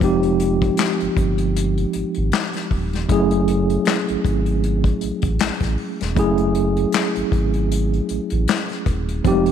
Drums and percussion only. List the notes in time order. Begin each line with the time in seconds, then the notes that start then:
0.01 kick, closed hi-hat
0.23 closed hi-hat
0.40 closed hi-hat
0.62 kick, closed hi-hat
0.77 snare, clap, closed hi-hat
1.00 closed hi-hat
1.17 kick, closed hi-hat
1.38 closed hi-hat
1.56 closed hi-hat
1.78 closed hi-hat
1.93 closed hi-hat
2.15 closed hi-hat
2.32 snare, clap, closed hi-hat
2.53 snare, closed hi-hat
2.71 kick, open hi-hat
2.93 snare, closed hi-hat
3.09 kick, closed hi-hat
3.31 closed hi-hat
3.48 closed hi-hat
3.70 closed hi-hat
3.85 snare, clap, closed hi-hat
4.08 closed hi-hat
4.25 kick, closed hi-hat
4.46 closed hi-hat
4.64 closed hi-hat
4.84 kick, closed hi-hat
5.01 closed hi-hat
5.22 kick, closed hi-hat
5.39 snare, clap, closed hi-hat
5.60 kick, snare, closed hi-hat
5.78 open hi-hat
6.01 snare, closed hi-hat
6.17 kick, closed hi-hat
6.38 closed hi-hat
6.55 closed hi-hat
6.77 closed hi-hat
6.92 snare, clap, closed hi-hat
7.16 closed hi-hat
7.32 kick, closed hi-hat
7.54 closed hi-hat
7.72 closed hi-hat
7.94 closed hi-hat
8.09 closed hi-hat
8.30 closed hi-hat
8.48 snare, clap, closed hi-hat
8.69 snare, closed hi-hat
8.86 kick, closed hi-hat
9.09 closed hi-hat
9.25 kick, closed hi-hat
9.46 closed hi-hat